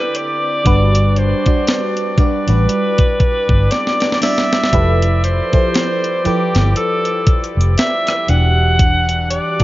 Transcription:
Already playing: woodwind section D3 C4 E4 G4 D5, fm electric piano D3 C4 E4 G4 A4, alto saxophone B4
0.15 alto saxophone D5, closed hi-hat
0.65 fingered electric bass G1, fm electric piano G3 D4 F#4 B4, woodwind section G3 D4 F#4 D5, kick, closed hi-hat
0.95 closed hi-hat
1.17 alto saxophone C5, closed hi-hat
1.45 fm electric piano G3 D4 F#4 D5, muted fingered electric bass stroke, kick, closed hi-hat
1.67 snare, closed hi-hat
1.97 closed hi-hat
2.18 fm electric piano G3 D4 F#4 D5, alto saxophone B4, muted fingered electric bass stroke, kick, closed hi-hat
2.47 fingered electric bass A1, fm electric piano G3 D4 F#4 B4, closed hi-hat
2.68 woodwind section E4, closed hi-hat
2.98 kick, closed hi-hat
3.20 muted fingered electric bass stroke, kick, closed hi-hat
3.49 fingered electric bass G1, kick
3.71 alto saxophone D5, snare, closed hi-hat
3.87 snare
4.00 snare, closed hi-hat
4.12 snare
4.21 fm electric piano G3 D4 F#4 D5, alto saxophone E5, snare, open hi-hat
4.38 snare
4.52 snare
4.63 snare
4.72 fingered electric bass F1, fm electric piano F3 E4 G4 A4 B4, woodwind section F3 G3 A4, kick, closed hi-hat
5.02 closed hi-hat
5.24 alto saxophone C5, closed hi-hat
5.52 fm electric piano F3 E4 G4 A4 C5, muted fingered electric bass stroke, kick, closed hi-hat
5.74 snare, closed hi-hat
6.04 closed hi-hat
6.24 fm electric piano F3 E4 G4 A4 B4, alto saxophone G4, muted fingered electric bass stroke, closed hi-hat
6.55 fingered electric bass G1, snare, closed hi-hat
6.76 alto saxophone A4, closed hi-hat
7.05 closed hi-hat
7.27 muted fingered electric bass stroke, kick, closed hi-hat
7.44 closed hi-hat
7.57 fingered electric bass F1, closed hi-hat
7.78 alto saxophone E5, snare, closed hi-hat
8.07 cross-stick, closed hi-hat
8.28 fingered electric bass E1, woodwind section E3 D4 F#5, fm electric piano E3 D4 F#4 G4, alto saxophone F#5, closed hi-hat
8.79 kick, closed hi-hat
9.09 closed hi-hat
9.31 alto saxophone D5, closed hi-hat
9.59 fm electric piano E3 D4 F#4, muted fingered electric bass stroke, kick, closed hi-hat

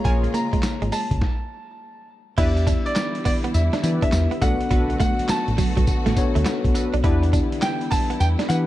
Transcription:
Already playing: string section C#3 F3 G#3 A#3 F4, tine electric piano A#3 F4 G#4 C#5
0.04 fingered electric bass A#1, analog polysynth F4 G#4 A#4 C#5, grand piano G#5, kick, closed hi-hat
0.24 muted clean electric guitar stroke, closed hi-hat
0.34 clean electric guitar A#3, grand piano A#5, closed hi-hat, tambourine
0.53 clean electric guitar G#3, muted fingered electric bass stroke, kick, closed hi-hat
0.63 muted fingered electric bass stroke, muted clean electric guitar stroke, snare, clap, closed hi-hat, tambourine
0.82 fingered electric bass G#1, clean electric guitar G#3, closed hi-hat
0.92 clean electric guitar G#3, grand piano A5, open hi-hat, tambourine
1.11 fingered electric bass C#2, kick, closed hi-hat
1.21 kick, snare
2.37 fingered electric bass E2, string section D3 E3 G3 B3 E4, tine electric piano B3 D4 E4 G4 D5, analog polysynth E4 G4 B4 D5, clean electric guitar E4, grand piano E5, kick, closed hi-hat, crash
2.57 muted clean electric guitar stroke, closed hi-hat
2.67 clean electric guitar D4, kick, closed hi-hat, tambourine
2.86 grand piano D5, closed hi-hat
2.96 muted clean electric guitar stroke, snare, clap, closed hi-hat, tambourine
3.15 closed hi-hat
3.25 clean electric guitar B3, grand piano D5, kick, open hi-hat, tambourine
3.44 clean electric guitar B3, closed hi-hat
3.54 fingered electric bass E2, grand piano E5, closed hi-hat, tambourine
3.73 clean electric guitar D4, snare, closed hi-hat
3.83 fingered electric bass E3, tine electric piano B3 D4 E4 G4 B4, analog polysynth E4 G4 B4 D5, muted clean electric guitar stroke, closed hi-hat, tambourine
4.02 clean electric guitar D4, grand piano E5, kick, closed hi-hat
4.12 fingered electric bass E2, muted clean electric guitar stroke, snare, clap, closed hi-hat, tambourine
4.31 clean electric guitar B3, closed hi-hat
4.41 fingered electric bass B1, string section F#3 A3 F#4, clean electric guitar A3, tine electric piano B3 D4 F#4 A4 D5, analog polysynth D4 F#4 A4 B4, grand piano F#5, kick, closed hi-hat, tambourine
4.61 closed hi-hat
4.70 fingered electric bass B1, clean electric guitar B3, analog polysynth D4 F#4 A4 B4, kick, closed hi-hat
4.90 muted clean electric guitar stroke, closed hi-hat
5.00 clean electric guitar A3, grand piano F#5, kick, closed hi-hat, tambourine
5.19 muted fingered electric bass stroke, closed hi-hat
5.28 grand piano A5, muted clean electric guitar stroke, muted fingered electric bass stroke, snare, clap, closed hi-hat, tambourine
5.48 fingered electric bass A1, closed hi-hat
5.58 clean electric guitar F#3, kick, open hi-hat, tambourine
5.77 fingered electric bass B1, clean electric guitar F#3, kick, closed hi-hat
5.87 kick, closed hi-hat, tambourine
6.06 fingered electric bass A1, clean electric guitar A3, snare, closed hi-hat
6.16 tine electric piano B3 D4 F#4 A4 C#5, muted clean electric guitar stroke, kick, closed hi-hat, tambourine
6.35 fingered electric bass D2, clean electric guitar A3, closed hi-hat
6.45 clean electric guitar B3, snare, clap, closed hi-hat, tambourine
6.65 fingered electric bass B1, kick, closed hi-hat
6.75 analog polysynth D4 F#4 A4 B4, muted clean electric guitar stroke, closed hi-hat, tambourine
6.94 fingered electric bass B1, clean electric guitar D4, closed hi-hat
7.03 fingered electric bass E2, string section D3 E3 G3 E4, tine electric piano B3 D4 E4 G4 D5, analog polysynth D4 E4 G4 B4, clean electric guitar E4, kick, closed hi-hat
7.23 muted clean electric guitar stroke, closed hi-hat
7.33 clean electric guitar D4, kick, closed hi-hat, tambourine
7.52 closed hi-hat
7.62 grand piano G5, muted clean electric guitar stroke, snare, clap, closed hi-hat, tambourine
7.81 closed hi-hat
7.91 clean electric guitar B3, grand piano A5, kick, open hi-hat, tambourine
8.10 clean electric guitar B3, closed hi-hat
8.20 fingered electric bass E2, grand piano G5, closed hi-hat, tambourine
8.39 clean electric guitar D4, snare, closed hi-hat
8.49 fingered electric bass E3, tine electric piano B3 D4 E4 G4 B4, analog polysynth D4 E4 G4 B4, grand piano F#5, muted clean electric guitar stroke, closed hi-hat, tambourine

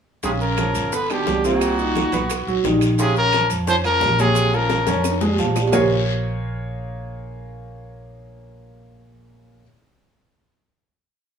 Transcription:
0.23 upright bass A#1, baritone saxophone C3, grand piano C#3 C#4, trumpet G#4, high bongo, high conga, high timbale, long guiro, maracas
0.41 baritone saxophone C#3, trumpet A#4, high conga, maracas
0.57 grand piano F3 F4, high bongo, high conga, high timbale, low timbale, short guiro, claves, maracas
0.74 upright bass G1, high timbale, short guiro, maracas
0.92 baritone saxophone D3, grand piano B3 B4, trumpet B4, high bongo, high conga, long guiro, maracas
1.10 baritone saxophone B2, grand piano D3 D4, trumpet G4, high conga, high timbale, claves, maracas
1.26 upright bass C2, high bongo, low bongo, high conga, low timbale, short guiro, maracas
1.44 baritone saxophone A#2, grand piano C3 C4, trumpet F#4, high conga, short guiro, maracas
1.61 high bongo, high conga, high timbale, long guiro, claves, maracas
1.79 grand piano D#3 D#4, high conga, maracas
1.95 high bongo, high conga, high timbale, low timbale, short guiro, maracas
2.12 upright bass B1, grand piano B3 B4, high bongo, high conga, high timbale, short guiro, maracas
2.30 high bongo, high timbale, long guiro, claves, maracas
2.47 upright bass B1, grand piano F#3 F#4, high bongo, high conga, maracas
2.64 upright bass A#1, grand piano D#3 D#4, high bongo, low bongo, high conga, high timbale, low timbale, short guiro, maracas
2.81 high bongo, high timbale, short guiro, claves, maracas
2.98 baritone saxophone C3, grand piano C#3 C#4, trumpet G#4, high bongo, high timbale, long guiro, maracas
3.16 baritone saxophone C#3, trumpet A#4, maracas
3.32 grand piano F3 F4, high bongo, high conga, high timbale, low timbale, short guiro, claves, maracas
3.50 upright bass F2, high conga, high timbale, short guiro, maracas
3.67 baritone saxophone F3, grand piano C#4 C#5, trumpet C5, high bongo, high conga, long guiro, maracas
3.84 baritone saxophone C#3, grand piano F3 F4, trumpet A#4, high conga, high timbale, claves, maracas
4.01 upright bass A#1, high bongo, low bongo, high conga, low timbale, short guiro, maracas
4.18 grand piano A#2 C#5, baritone saxophone C3, trumpet G#4, high conga, short guiro, maracas
4.35 high bongo, high conga, high timbale, long guiro, claves, maracas
4.53 baritone saxophone C#3, grand piano F3 F4, trumpet A#4, maracas
4.70 high bongo, high conga, high timbale, low timbale, short guiro, maracas
4.87 upright bass F2, grand piano C#4 C#5, high bongo, high conga, high timbale, short guiro, maracas
5.04 high bongo, long guiro, claves, maracas
5.10 high timbale
5.21 grand piano G#3 G#4, low bongo, high conga, low timbale, maracas
5.33 low timbale
5.38 upright bass A#1, grand piano F3 F4, low bongo, high conga, short guiro, maracas
5.45 low timbale
5.56 low bongo, low timbale, short guiro, claves, maracas
5.67 low timbale
5.72 upright bass A#1, grand piano A#3 F4 G#4 A#4 C5 C#5, low bongo, low conga, low timbale, long guiro, claves, maracas

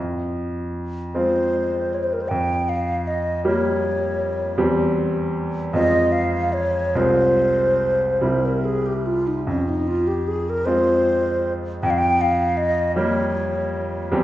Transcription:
Already playing: grand piano F2
1.15 grand piano G#3 C4 F4, flute C5
1.94 flute C#5
2.04 flute C5
2.13 flute A#4
2.22 flute C5
2.28 grand piano F2, flute G5
2.69 flute F5
3.07 flute D#5
3.45 grand piano G3 A#3 G4, flute C#5
4.58 grand piano E2 G3 C4 G4
5.73 grand piano F2 G#3 C4 F4, flute D#5
6.12 flute F5
6.53 flute C#5
6.95 grand piano C2 G#3 C4 F4, flute C5
8.21 grand piano C2 G3 C4 E4
8.45 flute A#4
8.65 flute G#4
8.86 flute G4
9.06 flute F4
9.27 flute D#4
9.46 grand piano F2, flute C#4
9.69 flute D#4
9.88 flute F4
10.07 flute G4
10.28 flute G#4
10.50 flute A#4
10.65 grand piano G#3 C4 F4, flute C5
11.83 grand piano F2, flute G5
11.90 flute F5
11.98 flute G5
12.21 flute F5
12.57 flute D#5
12.96 grand piano G3 A#3 G4, flute C#5
14.12 grand piano E2 G3 C4 G4

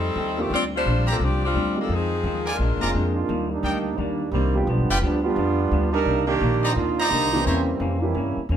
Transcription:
Already playing: upright bass F2, saxophone section G3 C4 D#4 A4
0.15 upright bass D#2, hollow-body jazz guitar F3 A3 D#4 G4
0.37 saxophone section D#3 A3 C4 G4, grand piano A#3 C4 D4 F4 G4
0.50 upright bass D2, hollow-body jazz guitar A#2 G3 C4, saxophone section C4 F4 D5
0.54 hollow-body jazz guitar D4, saxophone section G4
0.76 saxophone section G3 D4 F4 C5
0.86 upright bass A#1, hollow-body jazz guitar A#2 G3 C4 D4
1.07 saxophone section D4, trumpet section G4 C5 D5 A#5
1.11 saxophone section F3 A#3 A4
1.19 upright bass C2, hollow-body jazz guitar A#2 G3 C4 D4, saxophone section D4
1.23 saxophone section F3 C4 G4
1.45 saxophone section G3 C4 D4 F4
1.54 upright bass D2, hollow-body jazz guitar A#2 G3 C4 D4
1.75 grand piano G#3 C4 D#4 F4 G4
1.81 saxophone section F3 A#3 D4 A4
1.89 upright bass F2, hollow-body jazz guitar F2 D#3 G#3 C4
1.93 saxophone section F3 C4 D#4 G#4
2.24 upright bass D#2, hollow-body jazz guitar F2 D#3 G#3 C4
2.46 trumpet section F4 A#4 D5 G#5
2.50 saxophone section G#3 D4 F4 A#4
2.59 upright bass A#1, hollow-body jazz guitar A#2 F3 G#3 D4
2.71 upright bass G#1
2.80 upright bass F1, grand piano A#3 C4 D4 F4 G#4, trumpet section F4 A#4 D5 A#5
2.94 upright bass F2, hollow-body jazz guitar A#2 F3 G#3 D4
3.14 trombone section A#3 D4 D#4 F4
3.28 upright bass D#2, hollow-body jazz guitar D#3 G3 A#3 D4
3.50 trombone section G3 A#3 D4 D#4
3.63 upright bass D2, hollow-body jazz guitar D#3 G3 A#3 D4, trumpet section D#4 A#4 D5 G5
3.97 upright bass D#2, hollow-body jazz guitar D#3 G3 A#3 D4, trombone section D#3 G3 A#3 D4
4.31 upright bass C2, trombone section D#3 G3 A#3 C4, hollow-body jazz guitar D#3 G3
4.35 hollow-body jazz guitar A#3 D4
4.55 grand piano G3 B3 D4 F4 G4
4.66 upright bass B1, hollow-body jazz guitar G2 F3 B3 D4, trombone section D3 F3 G3 B3
4.78 upright bass G1
4.89 upright bass F1, trumpet section F4 B4 D5 G5
5.01 upright bass D2, hollow-body jazz guitar G2 F3 B3 D4, trombone section F3 G3 B3 D4
5.22 trombone section G3 B3 D4 F4, grand piano G3 B3 D4 F4 G4
5.36 upright bass F2, hollow-body jazz guitar G2 F3 B3 D4
5.71 upright bass D2, hollow-body jazz guitar G2 F3 B3 D4
5.92 trombone section G3 D4 D#4 A#4
6.05 upright bass C2, hollow-body jazz guitar C3 D#3 A#3
6.09 hollow-body jazz guitar D4
6.27 trombone section D#3 A#3 D4 G4
6.40 upright bass A#1, hollow-body jazz guitar C3 D#3 A#3 D4
6.63 trumpet section D#4 C5 D5 A#5
6.74 upright bass D#2, hollow-body jazz guitar C3 D#3 A#3 D4, trombone section A#3 D4 D#4 F4
6.99 trumpet section D#4 C5 D5 A#5
7.08 upright bass C2, hollow-body jazz guitar C3 D#3, trombone section D3 G3 A#3 D#4
7.12 hollow-body jazz guitar A#3 D4
7.31 grand piano C#3 E3 A#3 C4, trombone section D#3 G3 A#3 D4
7.35 grand piano G4
7.42 upright bass E2, hollow-body jazz guitar C3 E3, trombone section E3 G3 A#3 C4, trumpet section E4 C5 C#5 A#5
7.47 hollow-body jazz guitar A#3 C#4
7.80 upright bass F2, hollow-body jazz guitar C3 E3 A#3 C#4
7.99 grand piano E3 A#3 C4 C#4 G4, trombone section G3 A#3 C#4 E4
8.15 upright bass G2, hollow-body jazz guitar C3 E3 A#3 C#4
8.37 muted upright bass stroke
8.49 upright bass E2, hollow-body jazz guitar C3 E3 A#3 C#4

